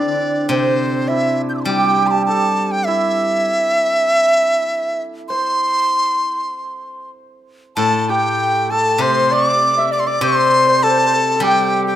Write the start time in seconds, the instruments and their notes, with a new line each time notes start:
Already playing: guzheng D3, hammered dulcimer C4 D4 E4 G4 A4, dizi D5
0.49 guzheng C3, hammered dulcimer C4, dizi C5
1.08 hammered dulcimer E4, dizi E5
1.49 dizi G6
1.55 dizi D6 E6
1.59 dizi A5 C6
1.65 guzheng G3, hammered dulcimer G4, dizi G5
1.77 hammered dulcimer G4
1.84 hammered dulcimer G4
1.92 hammered dulcimer G4
1.99 hammered dulcimer G4
2.07 hammered dulcimer G4, dizi A5 C6
2.13 hammered dulcimer G4
2.26 hammered dulcimer A4, dizi A5
2.71 dizi G5
2.86 hammered dulcimer E4, dizi E5
5.28 hammered dulcimer C5, dizi C6
7.76 guzheng A2, hammered dulcimer A4, soprano saxophone A4, dizi A5
8.02 dizi A5
8.09 hammered dulcimer G4, soprano saxophone G4, dizi G5
8.71 soprano saxophone A4, hammered dulcimer A4, dizi A5
8.98 guzheng C3, hammered dulcimer C5, soprano saxophone C5, dizi C6
9.31 soprano saxophone D5, hammered dulcimer D5, dizi D6
9.78 soprano saxophone E5, hammered dulcimer E5
9.92 soprano saxophone D5, dizi D6
10.00 dizi C6
10.07 hammered dulcimer D5, soprano saxophone D5, dizi D6
10.21 guzheng C3, hammered dulcimer C5, soprano saxophone C5, dizi C6
10.67 hammered dulcimer C5, soprano saxophone C5
10.83 hammered dulcimer A4, soprano saxophone A4, dizi A5
10.91 soprano saxophone C5
10.99 soprano saxophone A4
11.07 soprano saxophone C5
11.14 soprano saxophone A4
11.36 hammered dulcimer A4
11.40 guzheng G3, soprano saxophone G4, hammered dulcimer G4, dizi G5
11.87 soprano saxophone G4, dizi G5